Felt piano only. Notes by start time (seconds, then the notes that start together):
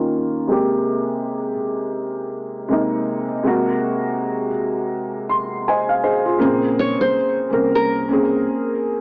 Already playing: D#3 A#3 C#4 F4
0.47 C3 G#3 A#3
0.51 G4
2.68 C3 G#3 A#3
2.72 D#4
3.43 C3 G#3 A#3
3.47 F#4
5.30 C6
5.68 C5 D#5 G#5
5.89 F5
6.04 G#4 C5 D#5
6.25 F4 G#4
6.38 C#3 A#3 C4
6.43 G#4
7.50 A#3 C4 C#4
7.54 A#4
8.09 A#3 C4 C#4
8.13 G#4